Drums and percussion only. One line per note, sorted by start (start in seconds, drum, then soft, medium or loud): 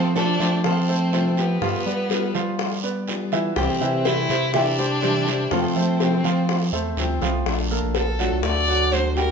0.16 high bongo medium
0.16 short guiro medium
0.40 high bongo soft
0.40 short guiro medium
0.64 high bongo medium
0.64 long guiro medium
1.13 high bongo soft
1.13 low bongo medium
1.13 short guiro medium
1.37 high bongo soft
1.37 short guiro medium
1.62 high bongo medium
1.62 long guiro medium
1.86 high bongo soft
2.10 high bongo medium
2.10 short guiro medium
2.35 high bongo soft
2.35 short guiro medium
2.59 high bongo medium
2.59 long guiro medium
3.08 high bongo soft
3.08 low bongo medium
3.08 short guiro medium
3.32 high bongo soft
3.32 short guiro medium
3.56 high bongo medium
3.56 long guiro medium
3.81 high bongo soft
4.05 high bongo medium
4.05 short guiro medium
4.29 high bongo soft
4.29 short guiro medium
4.54 high bongo medium
4.54 long guiro medium
5.02 high bongo soft
5.02 low bongo medium
5.02 short guiro medium
5.27 high bongo soft
5.27 short guiro medium
5.51 high bongo medium
5.51 long guiro medium
5.76 high bongo soft
6.00 high bongo medium
6.00 short guiro medium
6.24 high bongo soft
6.24 short guiro medium
6.49 high bongo medium
6.49 long guiro medium
6.97 high bongo soft
6.97 low bongo medium
6.97 short guiro medium
7.22 high bongo medium
7.22 short guiro medium
7.46 high bongo medium
7.46 long guiro medium
7.71 high bongo soft
7.95 high bongo medium
7.95 short guiro medium
8.19 high bongo soft
8.19 short guiro medium
8.43 high bongo medium
8.43 long guiro medium
8.92 high bongo soft
8.92 low bongo medium
8.92 short guiro medium
9.16 high bongo soft
9.16 short guiro medium